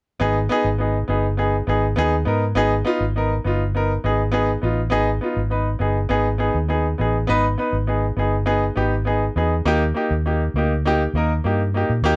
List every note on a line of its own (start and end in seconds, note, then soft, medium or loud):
0.20 0.47 G#1 loud
0.20 0.36 B3 loud
0.20 0.36 D#4 medium
0.20 0.37 G#4 loud
0.49 0.65 B3 loud
0.49 0.66 D#4 medium
0.49 0.67 G#4 loud
0.64 1.03 G#1 medium
0.78 0.95 B3 medium
0.78 0.96 D#4 medium
0.78 0.96 G#4 medium
1.08 1.60 G1 medium
1.08 1.24 B3 medium
1.08 1.25 D#4 medium
1.08 1.25 G#4 medium
1.37 1.54 B3 medium
1.37 1.54 D#4 medium
1.37 1.54 G#4 medium
1.67 1.93 G#1 medium
1.67 1.83 B3 medium
1.67 1.84 D#4 medium
1.67 1.84 G#4 medium
1.96 2.23 D#2 medium
1.96 2.12 B3 medium
1.96 2.13 D#4 medium
1.96 2.14 G#4 loud
2.25 2.52 G#2 medium
2.25 2.42 B3 medium
2.25 2.42 D#4 medium
2.25 2.43 A#4 medium
2.55 2.81 G#1 loud
2.55 2.72 B3 loud
2.55 2.72 D#4 loud
2.55 2.73 G#4 loud
2.85 3.01 B3 loud
2.85 3.01 D#4 medium
2.85 3.02 F4 loud
3.00 3.39 G#1 medium
3.16 3.31 B3 medium
3.16 3.32 D#4 medium
3.16 3.32 A#4 medium
3.44 3.96 G1 medium
3.44 3.60 B3 medium
3.44 3.61 D#4 medium
3.44 3.62 F4 medium
3.75 3.90 B3 medium
3.75 3.91 D#4 medium
3.75 3.91 A#4 medium
4.04 4.56 G#1 medium
4.04 4.20 B3 medium
4.04 4.20 D#4 medium
4.04 4.21 G#4 medium
4.32 4.48 B3 loud
4.32 4.49 D#4 medium
4.32 4.49 G#4 loud
4.62 4.89 A1 medium
4.62 4.78 B3 medium
4.62 4.79 D#4 medium
4.62 4.79 F4 medium
4.90 5.18 G#1 loud
4.90 5.07 B3 loud
4.90 5.08 D#4 loud
4.90 5.08 G#4 loud
5.21 5.37 B3 medium
5.21 5.38 D#4 medium
5.21 5.39 F4 medium
5.36 5.75 G#1 medium
5.50 5.66 B3 medium
5.50 5.67 D#4 medium
5.50 5.67 B4 medium
5.79 6.06 G1 medium
5.79 5.96 B3 medium
5.79 5.96 D#4 medium
5.79 5.97 G#4 medium
6.09 6.49 G#1 medium
6.09 6.26 B3 medium
6.09 6.26 D#4 medium
6.09 6.26 G#4 loud
6.38 6.55 B3 medium
6.38 6.55 D#4 medium
6.38 6.56 G#4 medium
6.54 6.93 D#2 medium
6.68 6.85 B3 medium
6.68 6.85 D#4 medium
6.68 6.85 G#4 medium
6.98 7.25 A1 medium
6.98 7.14 B3 medium
6.98 7.15 D#4 medium
6.98 7.16 G#4 medium
7.27 7.55 G#1 medium
7.27 7.44 B3 loud
7.27 7.45 D#4 medium
7.27 7.45 B4 loud
7.58 7.74 B3 medium
7.58 7.74 D#4 medium
7.58 7.74 B4 medium
7.73 8.12 G#1 medium
7.87 8.03 B3 medium
7.87 8.03 D#4 medium
7.87 8.04 G#4 medium
8.17 8.69 G1 medium
8.17 8.33 B3 medium
8.17 8.34 D#4 medium
8.17 8.34 G#4 medium
8.46 8.62 B3 medium
8.46 8.62 D#4 medium
8.46 8.63 G#4 loud
8.76 9.28 G#1 medium
8.76 8.92 B3 medium
8.76 8.92 D#4 medium
8.76 8.93 G4 medium
9.05 9.21 B3 medium
9.05 9.22 D#4 medium
9.05 9.22 G#4 medium
9.36 9.62 E2 medium
9.36 9.52 B3 medium
9.36 9.52 D#4 medium
9.36 9.52 G#4 medium
9.65 9.91 D#2 loud
9.65 9.81 A#3 loud
9.65 9.81 D#4 medium
9.65 9.82 G4 loud
9.94 10.10 A#3 medium
9.94 10.11 D#4 medium
9.94 10.12 G4 medium
10.11 10.49 D#2 medium
10.26 10.41 A#3 medium
10.26 10.41 D#4 medium
10.26 10.41 G4 medium
10.54 11.06 D2 medium
10.54 10.71 A#3 medium
10.54 10.71 D#4 medium
10.58 10.72 G4 medium
10.85 11.00 A#3 medium
10.85 11.01 D#4 medium
10.85 11.01 G4 loud
11.14 11.39 D#2 medium
11.14 11.30 A#3 medium
11.14 11.30 D#4 medium
11.14 11.31 A#4 medium
11.44 11.83 G2 medium
11.44 11.59 A#3 medium
11.44 11.60 D#4 medium
11.44 11.60 G4 medium
11.74 11.89 A#3 medium
11.74 11.90 D#4 medium
11.74 11.90 G4 medium
11.90 12.01 A#2 medium
12.02 12.16 D#2 medium
12.02 12.16 A#3 loud
12.02 12.16 D#4 medium
12.02 12.16 G4 loud